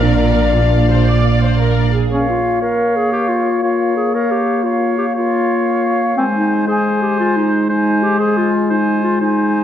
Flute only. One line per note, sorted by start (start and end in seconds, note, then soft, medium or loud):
2.11 2.59 F5 soft
2.62 3.61 F5 soft
3.63 4.12 F5 soft
4.13 4.63 F5 soft
4.64 5.15 F5 soft
5.16 6.19 F5 soft
6.18 6.68 G#5 soft
6.69 7.39 G#5 soft
7.70 8.19 G#5 soft
8.20 8.52 G#5 soft
8.70 9.17 G#5 soft
9.23 9.64 G#5 soft